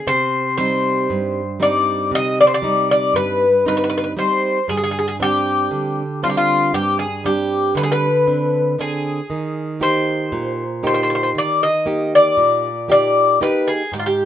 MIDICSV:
0, 0, Header, 1, 3, 480
1, 0, Start_track
1, 0, Tempo, 1025641
1, 37, Time_signature, 9, 3, 24, 8
1, 6669, End_track
2, 0, Start_track
2, 0, Title_t, "Bouzouki"
2, 0, Program_c, 0, 25
2, 35, Note_on_c, 0, 72, 94
2, 259, Note_off_c, 0, 72, 0
2, 269, Note_on_c, 0, 72, 90
2, 758, Note_off_c, 0, 72, 0
2, 760, Note_on_c, 0, 74, 90
2, 981, Note_off_c, 0, 74, 0
2, 1007, Note_on_c, 0, 75, 108
2, 1113, Note_off_c, 0, 75, 0
2, 1126, Note_on_c, 0, 74, 86
2, 1151, Note_off_c, 0, 74, 0
2, 1156, Note_on_c, 0, 72, 74
2, 1184, Note_off_c, 0, 72, 0
2, 1190, Note_on_c, 0, 74, 94
2, 1348, Note_off_c, 0, 74, 0
2, 1363, Note_on_c, 0, 74, 98
2, 1471, Note_off_c, 0, 74, 0
2, 1479, Note_on_c, 0, 71, 95
2, 1700, Note_off_c, 0, 71, 0
2, 1723, Note_on_c, 0, 71, 85
2, 1751, Note_off_c, 0, 71, 0
2, 1764, Note_on_c, 0, 71, 67
2, 1790, Note_off_c, 0, 71, 0
2, 1796, Note_on_c, 0, 71, 70
2, 1818, Note_off_c, 0, 71, 0
2, 1824, Note_on_c, 0, 71, 70
2, 1854, Note_off_c, 0, 71, 0
2, 1861, Note_on_c, 0, 71, 66
2, 1884, Note_off_c, 0, 71, 0
2, 1890, Note_on_c, 0, 71, 56
2, 1921, Note_off_c, 0, 71, 0
2, 1959, Note_on_c, 0, 72, 86
2, 2180, Note_off_c, 0, 72, 0
2, 2196, Note_on_c, 0, 68, 85
2, 2229, Note_off_c, 0, 68, 0
2, 2234, Note_on_c, 0, 68, 62
2, 2257, Note_off_c, 0, 68, 0
2, 2263, Note_on_c, 0, 68, 72
2, 2293, Note_off_c, 0, 68, 0
2, 2298, Note_on_c, 0, 68, 62
2, 2328, Note_off_c, 0, 68, 0
2, 2334, Note_on_c, 0, 68, 69
2, 2369, Note_off_c, 0, 68, 0
2, 2377, Note_on_c, 0, 68, 68
2, 2408, Note_off_c, 0, 68, 0
2, 2445, Note_on_c, 0, 67, 87
2, 2900, Note_off_c, 0, 67, 0
2, 2919, Note_on_c, 0, 65, 79
2, 2945, Note_off_c, 0, 65, 0
2, 2946, Note_on_c, 0, 67, 67
2, 2978, Note_off_c, 0, 67, 0
2, 2983, Note_on_c, 0, 65, 81
2, 3154, Note_off_c, 0, 65, 0
2, 3156, Note_on_c, 0, 67, 91
2, 3266, Note_off_c, 0, 67, 0
2, 3271, Note_on_c, 0, 68, 83
2, 3383, Note_off_c, 0, 68, 0
2, 3396, Note_on_c, 0, 67, 75
2, 3618, Note_off_c, 0, 67, 0
2, 3637, Note_on_c, 0, 71, 86
2, 3664, Note_off_c, 0, 71, 0
2, 3666, Note_on_c, 0, 68, 77
2, 3698, Note_off_c, 0, 68, 0
2, 3705, Note_on_c, 0, 71, 95
2, 4097, Note_off_c, 0, 71, 0
2, 4121, Note_on_c, 0, 68, 77
2, 4578, Note_off_c, 0, 68, 0
2, 4599, Note_on_c, 0, 72, 89
2, 5081, Note_off_c, 0, 72, 0
2, 5086, Note_on_c, 0, 72, 78
2, 5112, Note_off_c, 0, 72, 0
2, 5121, Note_on_c, 0, 72, 62
2, 5147, Note_off_c, 0, 72, 0
2, 5163, Note_on_c, 0, 72, 66
2, 5185, Note_off_c, 0, 72, 0
2, 5195, Note_on_c, 0, 72, 58
2, 5212, Note_off_c, 0, 72, 0
2, 5218, Note_on_c, 0, 72, 66
2, 5247, Note_off_c, 0, 72, 0
2, 5256, Note_on_c, 0, 72, 57
2, 5284, Note_off_c, 0, 72, 0
2, 5327, Note_on_c, 0, 74, 95
2, 5432, Note_off_c, 0, 74, 0
2, 5443, Note_on_c, 0, 75, 85
2, 5685, Note_off_c, 0, 75, 0
2, 5687, Note_on_c, 0, 74, 100
2, 6039, Note_off_c, 0, 74, 0
2, 6044, Note_on_c, 0, 74, 90
2, 6262, Note_off_c, 0, 74, 0
2, 6284, Note_on_c, 0, 71, 75
2, 6400, Note_on_c, 0, 68, 71
2, 6402, Note_off_c, 0, 71, 0
2, 6520, Note_off_c, 0, 68, 0
2, 6522, Note_on_c, 0, 67, 72
2, 6547, Note_off_c, 0, 67, 0
2, 6549, Note_on_c, 0, 65, 61
2, 6579, Note_off_c, 0, 65, 0
2, 6581, Note_on_c, 0, 67, 71
2, 6669, Note_off_c, 0, 67, 0
2, 6669, End_track
3, 0, Start_track
3, 0, Title_t, "Nylon-string guitar"
3, 0, Program_c, 1, 24
3, 32, Note_on_c, 1, 48, 59
3, 272, Note_on_c, 1, 55, 47
3, 275, Note_on_c, 1, 60, 43
3, 277, Note_on_c, 1, 63, 51
3, 499, Note_off_c, 1, 48, 0
3, 514, Note_on_c, 1, 43, 64
3, 657, Note_off_c, 1, 55, 0
3, 659, Note_off_c, 1, 60, 0
3, 661, Note_off_c, 1, 63, 0
3, 747, Note_on_c, 1, 55, 48
3, 750, Note_on_c, 1, 63, 53
3, 751, Note_on_c, 1, 60, 43
3, 980, Note_off_c, 1, 43, 0
3, 989, Note_on_c, 1, 48, 59
3, 1135, Note_off_c, 1, 55, 0
3, 1135, Note_off_c, 1, 60, 0
3, 1136, Note_off_c, 1, 63, 0
3, 1227, Note_on_c, 1, 55, 48
3, 1230, Note_on_c, 1, 60, 40
3, 1234, Note_on_c, 1, 63, 52
3, 1457, Note_off_c, 1, 48, 0
3, 1467, Note_on_c, 1, 43, 66
3, 1614, Note_off_c, 1, 55, 0
3, 1615, Note_off_c, 1, 60, 0
3, 1618, Note_off_c, 1, 63, 0
3, 1709, Note_on_c, 1, 55, 44
3, 1710, Note_on_c, 1, 60, 42
3, 1714, Note_on_c, 1, 63, 53
3, 1936, Note_off_c, 1, 43, 0
3, 1944, Note_off_c, 1, 55, 0
3, 1946, Note_off_c, 1, 60, 0
3, 1949, Note_off_c, 1, 63, 0
3, 1950, Note_on_c, 1, 55, 46
3, 1953, Note_on_c, 1, 60, 46
3, 1954, Note_on_c, 1, 63, 54
3, 2143, Note_off_c, 1, 55, 0
3, 2145, Note_off_c, 1, 60, 0
3, 2146, Note_off_c, 1, 63, 0
3, 2190, Note_on_c, 1, 43, 61
3, 2431, Note_on_c, 1, 55, 45
3, 2433, Note_on_c, 1, 60, 44
3, 2434, Note_on_c, 1, 62, 48
3, 2657, Note_off_c, 1, 43, 0
3, 2672, Note_on_c, 1, 50, 70
3, 2815, Note_off_c, 1, 55, 0
3, 2817, Note_off_c, 1, 60, 0
3, 2817, Note_off_c, 1, 62, 0
3, 2914, Note_on_c, 1, 55, 49
3, 2916, Note_on_c, 1, 60, 44
3, 2921, Note_on_c, 1, 62, 57
3, 3138, Note_off_c, 1, 50, 0
3, 3151, Note_on_c, 1, 43, 58
3, 3297, Note_off_c, 1, 55, 0
3, 3299, Note_off_c, 1, 60, 0
3, 3301, Note_off_c, 1, 62, 0
3, 3389, Note_on_c, 1, 55, 50
3, 3392, Note_on_c, 1, 60, 41
3, 3395, Note_on_c, 1, 62, 55
3, 3617, Note_off_c, 1, 43, 0
3, 3626, Note_on_c, 1, 50, 67
3, 3774, Note_off_c, 1, 55, 0
3, 3776, Note_off_c, 1, 60, 0
3, 3778, Note_off_c, 1, 62, 0
3, 3871, Note_on_c, 1, 60, 44
3, 3872, Note_on_c, 1, 62, 56
3, 4095, Note_off_c, 1, 50, 0
3, 4108, Note_off_c, 1, 62, 0
3, 4109, Note_off_c, 1, 60, 0
3, 4111, Note_on_c, 1, 50, 46
3, 4113, Note_on_c, 1, 60, 41
3, 4115, Note_on_c, 1, 62, 52
3, 4304, Note_off_c, 1, 50, 0
3, 4305, Note_off_c, 1, 60, 0
3, 4305, Note_off_c, 1, 62, 0
3, 4352, Note_on_c, 1, 51, 64
3, 4586, Note_on_c, 1, 58, 50
3, 4589, Note_on_c, 1, 63, 44
3, 4592, Note_on_c, 1, 67, 56
3, 4818, Note_off_c, 1, 51, 0
3, 4831, Note_on_c, 1, 46, 72
3, 4972, Note_off_c, 1, 58, 0
3, 4975, Note_off_c, 1, 63, 0
3, 4976, Note_off_c, 1, 67, 0
3, 5068, Note_on_c, 1, 58, 50
3, 5071, Note_on_c, 1, 63, 42
3, 5072, Note_on_c, 1, 67, 51
3, 5297, Note_off_c, 1, 46, 0
3, 5310, Note_on_c, 1, 51, 56
3, 5454, Note_off_c, 1, 58, 0
3, 5455, Note_off_c, 1, 63, 0
3, 5456, Note_off_c, 1, 67, 0
3, 5549, Note_on_c, 1, 58, 48
3, 5552, Note_on_c, 1, 63, 45
3, 5554, Note_on_c, 1, 67, 50
3, 5777, Note_off_c, 1, 51, 0
3, 5790, Note_on_c, 1, 46, 68
3, 5935, Note_off_c, 1, 58, 0
3, 5937, Note_off_c, 1, 63, 0
3, 5937, Note_off_c, 1, 67, 0
3, 6029, Note_on_c, 1, 58, 44
3, 6032, Note_on_c, 1, 63, 44
3, 6035, Note_on_c, 1, 67, 52
3, 6257, Note_off_c, 1, 46, 0
3, 6268, Note_off_c, 1, 58, 0
3, 6269, Note_off_c, 1, 63, 0
3, 6273, Note_on_c, 1, 58, 48
3, 6274, Note_off_c, 1, 67, 0
3, 6276, Note_on_c, 1, 63, 43
3, 6279, Note_on_c, 1, 67, 49
3, 6465, Note_off_c, 1, 58, 0
3, 6466, Note_off_c, 1, 63, 0
3, 6469, Note_off_c, 1, 67, 0
3, 6514, Note_on_c, 1, 44, 59
3, 6669, Note_off_c, 1, 44, 0
3, 6669, End_track
0, 0, End_of_file